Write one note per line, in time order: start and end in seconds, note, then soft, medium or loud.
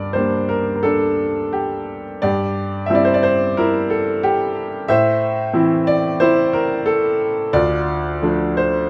0.00 2.20 G2 soft
0.00 0.47 A#4 soft
0.00 2.22 D5 medium
0.13 2.19 G3 soft
0.13 2.19 A#3 soft
0.13 0.83 D4 soft
0.13 0.50 C5 medium
0.49 0.74 A#4 medium
0.75 0.84 A#4 soft
0.83 2.19 D4 medium
0.83 1.55 A4 medium
1.53 2.02 G4 medium
2.22 4.84 G2 medium
2.22 3.54 G4 medium
2.22 2.90 D5 medium
2.86 4.84 G3 soft
2.86 2.96 E5 medium
2.90 4.84 C4 soft
2.90 3.57 E4 soft
2.95 3.05 D5 medium
3.05 3.14 C5 medium
3.14 3.23 D5 medium
3.23 3.55 C5 medium
3.57 4.85 E4 medium
3.57 3.88 A#4 medium
3.90 4.24 A4 medium
4.23 4.69 G4 medium
4.88 7.49 A2 medium
4.88 6.17 C5 medium
4.88 5.90 E5 medium
5.53 7.49 E3 soft
5.53 7.49 C4 soft
5.53 6.20 E4 medium
5.87 6.21 D5 medium
6.20 7.50 E4 medium
6.20 6.54 C5 medium
6.53 6.87 A#4 medium
6.86 7.32 A4 medium
7.53 8.90 D2 medium
7.53 8.89 F4 medium
7.53 8.18 D5 medium
8.22 8.90 F3 soft
8.22 8.90 A3 soft
8.22 8.90 D4 soft
8.57 8.90 C5 medium